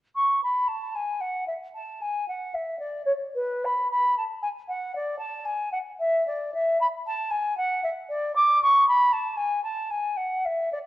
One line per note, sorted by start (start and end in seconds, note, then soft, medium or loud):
0.15 0.41 C#6 medium
0.43 0.69 B5 medium
0.68 0.97 A5 medium
0.95 1.22 G#5 medium
1.21 1.47 F#5 medium
1.47 1.53 E5 medium
1.75 2.03 A5 medium
2.01 2.27 G#5 medium
2.28 2.55 F#5 medium
2.54 2.78 E5 medium
2.79 3.05 D5 medium
3.05 3.12 C#5 medium
3.35 3.66 B4 medium
3.65 3.90 B5 soft
3.91 4.17 B5 medium
4.17 4.23 A5 medium
4.42 4.48 G#5 medium
4.68 4.95 F#5 medium
4.95 5.18 D5 medium
5.18 5.46 A5 medium
5.45 5.71 G#5 medium
5.72 5.78 F#5 medium
5.99 6.26 E5 medium
6.27 6.53 D5 medium
6.54 6.80 E5 medium
6.80 6.86 B5 medium
7.06 7.32 A5 medium
7.30 7.56 G#5 medium
7.57 7.83 F#5 medium
7.83 7.89 E5 medium
8.09 8.35 D5 medium
8.35 8.61 D6 medium
8.63 8.87 C#6 medium
8.88 9.14 B5 medium
9.13 9.38 A5 medium
9.37 9.63 G#5 medium
9.63 9.91 A5 medium
9.90 10.18 G#5 medium
10.16 10.46 F#5 medium
10.45 10.72 E5 medium
10.72 10.78 D5 medium